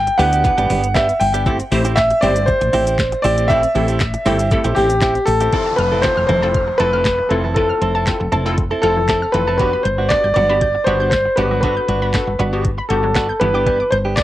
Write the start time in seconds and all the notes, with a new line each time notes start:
Already playing: G5
0.07 muted clean electric guitar stroke, closed hi-hat, shaker
0.18 D2 B3 D4 E4 G4 B4 F#5, open hi-hat, shaker
0.32 B3 D4 G4, closed hi-hat, shaker
0.44 B3 D4 E4 G4 B4, muted clean electric guitar stroke, kick, shaker
0.58 G1 B3 D4 G4, closed hi-hat, shaker
0.70 G1 B3 D4 G4, open hi-hat, shaker
0.83 muted clean electric guitar stroke, closed hi-hat, shaker
0.94 B3 D4 G4 E5, kick, snare, clap, shaker
1.09 muted clean electric guitar stroke, closed hi-hat, shaker
1.20 G1 G5, muted clean electric guitar stroke, open hi-hat, shaker
1.34 B3 D4 G4, closed hi-hat, shaker
1.46 A3 C4 E4 G4 A4, kick, shaker
1.59 muted clean electric guitar stroke, closed hi-hat, shaker
1.71 A1 A3 C4 E4 G4 C5, muted clean electric guitar stroke, open hi-hat, shaker
1.85 C4 E4 G4, closed hi-hat, shaker
1.96 E5, kick, snare, clap, shaker
2.10 muted clean electric guitar stroke, closed hi-hat, shaker
2.21 G1 A3 C4 E4 G4 C5 D5, open hi-hat, shaker
2.36 muted clean electric guitar stroke, closed hi-hat, shaker
2.46 C5, muted clean electric guitar stroke, kick, shaker
2.61 A1, muted clean electric guitar stroke, closed hi-hat, shaker
2.73 A1 C4 E4 G4, open hi-hat, shaker
2.87 C4 E4 G4, closed hi-hat, shaker
2.99 muted clean electric guitar stroke, kick, snare, clap, shaker
3.12 muted clean electric guitar stroke, closed hi-hat, shaker
3.22 A1 C4 E4 G4 D5, open hi-hat, shaker
3.37 C4 E4 G4, closed hi-hat, shaker
3.48 A3 C4 E4 G4 A4 E5, kick, shaker
3.63 muted clean electric guitar stroke, closed hi-hat, shaker
3.75 A1 A3 C4 E4 G4 A4, open hi-hat, shaker
3.88 C4 E4 G4, closed hi-hat, shaker
4.00 muted clean electric guitar stroke, kick, snare, clap, shaker
4.14 muted clean electric guitar stroke, closed hi-hat, shaker
4.26 G1 A3 C4 E4 G4 A4, open hi-hat, shaker
4.39 C4 E4 G4, closed hi-hat, shaker
4.51 A3 C4 E4 G4 A4, kick, shaker
4.64 A1 C4 E4 G4, closed hi-hat, shaker
4.75 A1 C4 E4 G4, open hi-hat, shaker
4.90 muted clean electric guitar stroke, closed hi-hat, shaker
5.01 C4 E4 G4, kick, snare, clap, shaker
5.15 muted clean electric guitar stroke, closed hi-hat, shaker
5.26 A1 A4, muted clean electric guitar stroke, open hi-hat, shaker
5.41 C4 E4 G4, closed hi-hat, shaker
5.53 E3 C4 E4 F4 A4, kick, closed hi-hat, downlifter
5.66 A5, muted clean electric guitar stroke
5.76 F1 B4 F6, muted clean electric guitar stroke, closed hi-hat
5.92 C4 E4 A4
6.02 C4 E4 F4 A4 C5, kick, snare, clap, closed hi-hat
6.17 F1 F6, muted clean electric guitar stroke
6.27 F1 E3 C4 E4 A4 C5, closed hi-hat
6.42 C4 E4 F4 A4 A5, muted clean electric guitar stroke
6.54 F6, muted clean electric guitar stroke, kick, closed hi-hat
6.68 muted clean electric guitar stroke
6.78 F1 C4 E4 F4 A4 B4 A5, closed hi-hat
6.93 C4 E4 A4 F6
7.05 muted clean electric guitar stroke, kick, snare, clap, closed hi-hat
7.19 muted clean electric guitar stroke
7.29 F1 C4 E4 F4 A4, closed hi-hat
7.44 E3 C4 E4 A4
7.54 C4 E4 F4 A4 B4 A5, kick, closed hi-hat
7.69 F6, muted clean electric guitar stroke
7.81 F1 C4 E4 A4, closed hi-hat
7.95 C4 E4 A4 A5
8.07 C4 E4 F4 A4, kick, snare, clap, closed hi-hat
8.20 F1, muted clean electric guitar stroke
8.32 F1 C4 E4 A4 A5, closed hi-hat
8.46 C4 E4 F4 A4
8.58 muted clean electric guitar stroke, kick, closed hi-hat
8.71 C4 E4 A4 A5
8.82 F1 C4 E4 F4 A4 F6, closed hi-hat
8.97 E3, muted clean electric guitar stroke
9.08 C4 E4 A4 A5, kick, snare, clap, closed hi-hat
9.22 F6, muted clean electric guitar stroke
9.32 F1 E3 C4 E4 F4 A4 B4, muted clean electric guitar stroke, closed hi-hat
9.47 C4 E4 A4 A5
9.58 F#3 B3 D4 F#4 G4 B4, kick, closed hi-hat
9.73 B5, muted clean electric guitar stroke
9.83 G1 C5 G6, muted clean electric guitar stroke, closed hi-hat
9.98 B3 D4 F#4
10.09 B3 D4 F#4 G4 D5, kick, snare, clap, closed hi-hat
10.24 G1 G6, muted clean electric guitar stroke
10.34 G1 F#3 B3 D4 F#4 D5, closed hi-hat
10.49 B3 D4 F#4 G4 B5, muted clean electric guitar stroke
10.61 G6, muted clean electric guitar stroke, kick, closed hi-hat
10.75 muted clean electric guitar stroke
10.84 G1 B3 D4 F#4 G4 C5 B5, closed hi-hat
11.00 B3 D4 F#4 G6
11.10 C5, muted clean electric guitar stroke, kick, snare, clap, closed hi-hat
11.25 muted clean electric guitar stroke
11.36 G1 B3 D4 F#4 G4 B4, closed hi-hat
11.51 F#3 B3 D4 F#4
11.61 B3 D4 F#4 A4 B4 B5, kick, closed hi-hat
11.76 G6, muted clean electric guitar stroke
11.88 G1 B3 D4 F#4, closed hi-hat
12.02 B3 D4 F#4 B5
12.14 B3 D4 F#4 A4, muted clean electric guitar stroke, kick, snare, clap, closed hi-hat
12.27 G1, muted clean electric guitar stroke
12.39 G1 B3 D4 F#4 B5, closed hi-hat
12.52 B3 D4 F#4 G4
12.64 muted clean electric guitar stroke, kick, closed hi-hat
12.78 B5, muted clean electric guitar stroke
12.89 G1 B3 D4 F#4 G4 A4 G6, closed hi-hat
13.03 F#3, muted clean electric guitar stroke
13.15 B3 D4 F#4 B5, kick, snare, clap, closed hi-hat
13.29 G6, muted clean electric guitar stroke
13.40 G1 E3 B3 D4 E4 G4 B4, muted clean electric guitar stroke, closed hi-hat
13.54 B3 D4 G4 D6
13.66 E3 B3 D4 G4, kick, closed hi-hat
13.80 D6, muted clean electric guitar stroke
13.90 G1 C5 G6, muted clean electric guitar stroke, closed hi-hat
14.05 B3 D4 G4
14.16 B3 D4 E4 A4 D5, kick, snare, clap, closed hi-hat